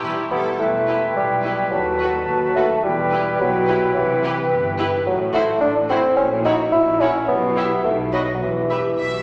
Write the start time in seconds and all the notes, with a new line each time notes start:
Already playing: G4 E6
0.01 E1 E2 G3 E4 B4
0.31 E1 E2 G3 B3 E4 A4
0.58 E1 E2 A3 E4 G4 B4 G5
0.87 E4 G4 B4
1.15 B1 B2 G3
1.43 E4 G4 B4
1.71 D#2 F#3 F#4 A4 A5
2.00 F#4 A4 B4
2.28 D#2
2.56 A3 F#4 A4 B4
2.83 E1 E2 G3 E4 G4 B4 G5
3.11 E4 G4 B4
3.39 B1 B2 F#3
3.68 E4 G4 B4
3.94 C2 C3 E3
4.23 E4 G4 B4
4.50 G1 G2
4.78 E4 G4 B4
5.05 A1 A2 F#3 E4 A4
5.33 A3 E4 F#4 C5 F#5
5.61 A1 A2 D4
5.89 C4 E4 F#4 C5 F#5
6.17 A#1 A#2 C#4 F#4
6.45 D#4 E4 F#4 C#5 F#5
6.72 A#1 A#2 E4
7.00 C#4 E4 F#4 C#5 F#5
7.28 B1 B2 B3 E4 G4
7.56 E4 G4 E5 G5
7.85 B1 B2 A3 D#4 F#4
8.12 F#3 F#4 B4 D#5 B5
8.35 F#3
8.41 E1 E2 E3 E4 G4
8.70 G4 B4 E5 B5
8.98 B1 B2 E5